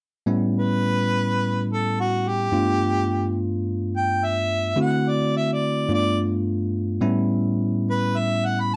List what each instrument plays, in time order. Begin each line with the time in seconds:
0.26 tine electric piano A2 G3 B3 C#4 E4
0.59 harmonica B4
1.73 harmonica A4
2.00 harmonica F#4
2.28 harmonica G4
2.52 tine electric piano G2 A3 B3 D4 F4
3.97 harmonica G5
4.25 harmonica E5
4.76 tine electric piano D3 A3 C4 E4 F#4
4.81 harmonica F#5
5.09 harmonica D5
5.37 harmonica E5
5.53 harmonica D5
5.89 tine electric piano G2 A3 B3 D4 F4
5.93 harmonica D5
7.01 tine electric piano A2 G3 B3 C#4 E4
7.90 harmonica B4
8.18 harmonica E5
8.45 harmonica F#5
8.60 harmonica B5